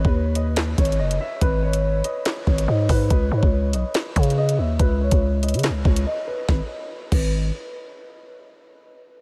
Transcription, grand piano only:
0.00 0.33 C#5 medium
0.36 0.53 D#5 medium
0.78 0.95 C#5 medium
0.99 1.16 D#5 medium
1.21 1.38 E5 medium
1.42 1.59 B4 loud
1.63 2.02 C#5 medium
2.05 2.22 D#5 medium
2.47 2.64 C#5 medium
2.68 2.85 D#5 medium
2.89 3.06 B4 medium
3.10 3.28 B4 loud
3.32 3.71 C#5 medium
3.74 3.91 D#5 medium
4.16 4.33 C#5 medium
4.38 4.55 D#5 medium
4.59 4.76 E5 medium
4.80 4.97 B4 loud
5.01 5.41 C#5 medium
5.43 5.60 D#5 medium
5.85 6.02 C#5 medium
6.06 6.24 D#5 medium
6.27 6.44 B4 medium
6.49 6.61 B4 medium
7.12 7.32 B4 medium

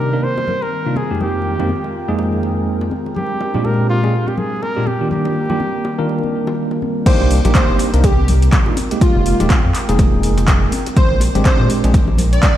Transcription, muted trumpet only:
0.00 0.25 A#4 medium
0.23 0.64 C5 loud
0.62 0.98 A#4 loud
0.97 1.22 G#4 medium
1.21 2.19 G4 medium
3.16 3.66 G4 loud
3.65 3.89 A#4 loud
3.89 4.29 F4 loud
4.28 4.40 G4 medium
4.38 4.64 G#4 medium
4.63 4.88 A#4 loud
4.87 5.11 G4 medium
5.11 6.54 G4 medium

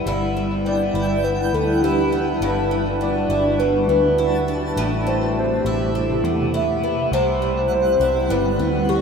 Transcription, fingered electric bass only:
0.06 0.90 G1 medium
0.94 1.50 G1 medium
1.53 2.37 D2 medium
2.41 3.25 G1 medium
3.29 3.85 G1 medium
3.88 4.73 D2 medium
4.77 5.61 A1 medium
5.65 6.23 A1 medium
6.23 7.08 E2 medium
7.12 7.96 C2 loud
8.00 8.28 C2 medium
8.30 8.58 G1 medium
8.59 9.01 D2 medium

